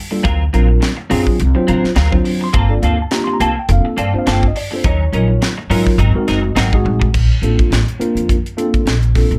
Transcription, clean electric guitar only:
0.11 muted clean electric guitar stroke
0.23 F#3 C4 F4 A#4
0.53 F#3 C4 F4 A#4
0.68 muted clean electric guitar stroke
0.80 muted clean electric guitar stroke
0.97 muted clean electric guitar stroke
1.10 F#3 C4 F4 A#4
1.26 muted clean electric guitar stroke
1.55 muted clean electric guitar stroke
1.67 F#3 C4 F4 A#4
1.84 muted clean electric guitar stroke
1.95 F#3 C4 F4 A#4
2.24 muted clean electric guitar stroke
2.41 muted clean electric guitar stroke
2.53 A#3 C4 F4 A4
2.83 A#3 C4 F4 A4
2.98 muted clean electric guitar stroke
3.11 muted clean electric guitar stroke
3.27 muted clean electric guitar stroke
3.40 A#3 C4 F4 A4
3.56 muted clean electric guitar stroke
3.85 muted clean electric guitar stroke
3.97 A#3 C4 F4 A4
4.14 muted clean electric guitar stroke
4.26 A#3 C4 F4 A4
4.55 muted clean electric guitar stroke
4.71 muted clean electric guitar stroke
4.85 F#3 C#4 D#4 A#4
5.13 F#3 C#4 D#4 A#4
5.28 muted clean electric guitar stroke
5.42 muted clean electric guitar stroke
5.58 muted clean electric guitar stroke
5.70 F#3 C#4 D#4 A#4
5.86 muted clean electric guitar stroke
5.99 F#3 C4 D#4 A#4
6.14 muted clean electric guitar stroke
6.28 F#3 C4 D#4 A#4
6.43 muted clean electric guitar stroke
6.55 F#3 C4 D#4 A#4
6.84 muted clean electric guitar stroke
7.00 muted clean electric guitar stroke

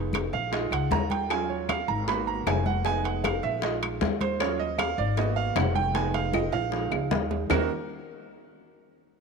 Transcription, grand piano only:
Already playing: G#3 B3 D#4
0.33 F5
0.52 G#3 D#4 F4 D#5
0.72 F#5
0.92 A#5
1.11 G5
1.30 F#3 C#4 F4 G#5
1.49 C#5
1.69 F5
1.88 A#5
2.07 A#3 B3 F#4 B5
2.27 A#5
2.47 G#5
2.66 F#5
2.84 G#3 B3 D#4 G#5
3.04 F#5
3.24 F5
3.43 E5
3.63 G#3 D#4 F4 D#5
4.21 C5
4.40 F#3 C#4 F4 C#5
4.60 D#5
4.78 F5
4.98 D5
5.17 A#3 B3 F#4 D#5
5.36 F5
5.56 F#5
5.75 G5
5.94 G#3 B3 D#4 G#5
6.14 F5
6.34 D#5
6.53 F5
6.71 F3 G#3 D#4
7.50 D#3 A#3 C#4 D#4 F#4 A#4

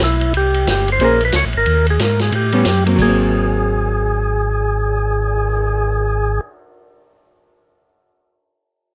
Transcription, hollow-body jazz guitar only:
1.01 A#3 C#4 G#4 C5
2.53 G3 B3 C#4
2.86 F#3 A#3 C4
2.96 F#3
3.02 A#3
3.08 C4

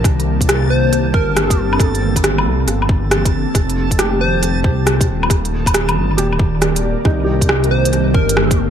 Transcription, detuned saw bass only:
0.04 C2
1.14 G1
1.58 G1
2.45 C2
2.67 G1
3.55 F1
4.64 C2
5.08 D#1
5.96 G1
6.18 D#1
7.05 C2
8.14 G1
8.59 G1

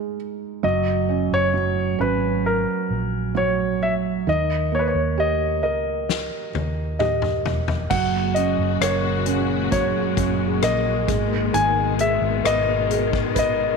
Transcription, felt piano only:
Already playing: G#3 D#4
0.63 F#3
1.09 C#4
1.54 F#3
1.99 C#4
3.35 F#3
4.27 D#3
4.72 A#3
5.18 G4
5.63 A#4
7.00 G4
7.91 F#3
8.36 C#4
8.82 A#4
9.26 C#4
9.71 F#3
10.17 C#4
10.62 A#4
11.07 G#3
11.53 D#3
11.99 G#4
12.44 B4
12.90 G#4
13.35 B4

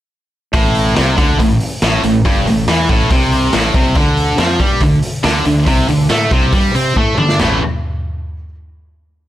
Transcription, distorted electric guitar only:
0.54 A2
0.96 C3
1.17 D3
1.40 A2
1.83 A2
2.04 A2
2.25 G2
2.46 A2
2.69 E3
2.90 A2
3.11 C3
3.54 A2
3.75 C3
3.97 D3
4.39 F3
4.60 G3
4.81 D3
5.24 D3
5.46 D3
5.67 C3
5.89 D3
6.10 A3
6.32 C3
6.53 G3
6.76 C4
6.98 A3
7.19 D4
7.39 A2 E3 A3

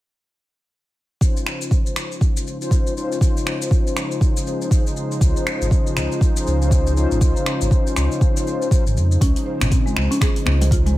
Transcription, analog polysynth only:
1.21 C#4 D#4 F4 C5
2.61 C#4 D#4 F4 C5
2.96 C#4 D#4 F4 C5
3.21 C#4 D#4 F4 C5
4.71 C#4 D#4 F4 C5
5.21 C#4 D#4 F4 C5
6.61 C#4 D#4 F4 C5
6.96 C#4 D#4 F4 C5
7.21 C#4 D#4 F4 C5
8.71 C#4 D#4 F4 C5

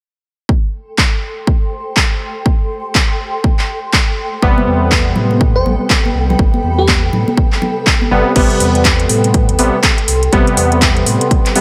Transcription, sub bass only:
4.42 A1
4.67 E2
5.16 A2
5.56 D2
5.65 A1
6.14 C2
6.39 A1
6.64 E2
7.13 A2
8.11 G1
8.36 A1
8.60 E2
9.10 A2
9.49 D2
9.59 A1
10.08 C2
10.33 A1
10.57 E2
11.06 A2

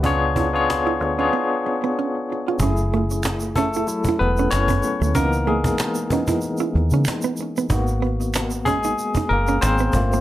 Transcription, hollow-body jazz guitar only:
0.05 C#4
0.37 E4
0.87 E4
1.02 muted hollow-body jazz guitar stroke
1.19 C#4
1.33 B3
1.66 muted hollow-body jazz guitar stroke
1.84 B3
1.99 C#4
2.32 muted hollow-body jazz guitar stroke
2.48 F4
2.63 C#4
2.94 A3
3.27 muted hollow-body jazz guitar stroke
3.58 C#4
3.77 E4
4.09 E4
4.22 muted hollow-body jazz guitar stroke
4.39 C#4
4.70 B3
4.85 muted hollow-body jazz guitar stroke
5.02 A3
5.16 C#4
5.47 A3
5.80 muted hollow-body jazz guitar stroke
6.13 C#4
6.29 E4
6.60 E4
6.76 muted hollow-body jazz guitar stroke
6.94 C#4
7.24 B3
7.41 muted hollow-body jazz guitar stroke
7.58 B3
7.72 D#4
8.02 B3
8.36 muted hollow-body jazz guitar stroke
8.67 C#4
8.85 D#4
9.17 D#4
9.30 muted hollow-body jazz guitar stroke
9.49 C#4
9.80 B3
9.96 muted hollow-body jazz guitar stroke
10.14 A#3

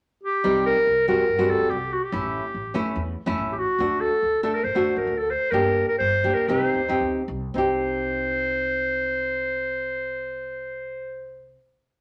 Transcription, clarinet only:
0.23 G4
0.66 A#4
1.08 A#4
1.50 A4
1.70 G4
1.93 F#4
2.03 G4
3.52 G4
3.58 F#4
4.01 A4
4.43 A4
4.55 A#4
4.64 C5
4.97 A#4
5.18 A4
5.30 C5
5.51 A#4
5.88 A#4
5.98 C5
6.34 A#4
6.47 B4
6.66 C5
7.54 C5

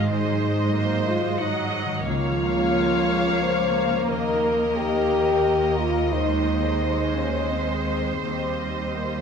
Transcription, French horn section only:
0.09 D#4
1.08 F4
1.41 D#4
2.07 F4
3.44 C5
4.09 A#4
4.76 G4
5.77 F4
6.12 D#4
7.14 C#4
7.49 C4
8.22 C4
8.95 A#3

